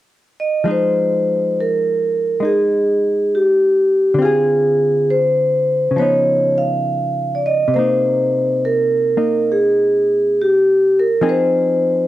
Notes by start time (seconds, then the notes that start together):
0.40 D#5
0.64 F3 G#3 D#4
0.71 C5
1.61 A#4
2.40 G#3 D#4
2.45 G#4
3.35 G4
4.14 D3
4.19 C4 F4 G#4
4.25 G#4
5.10 C5
5.91 C#3
5.96 F3 B3 C#5
6.02 D#4
6.58 F5
7.35 D5
7.46 D#5
7.68 C3
7.74 A#3 C5
7.79 D#4
8.65 A#4
9.17 A#3 D#4
9.52 G#4
10.42 G4
11.00 A#4
11.21 F3 C4 D#4 G#4
11.29 C5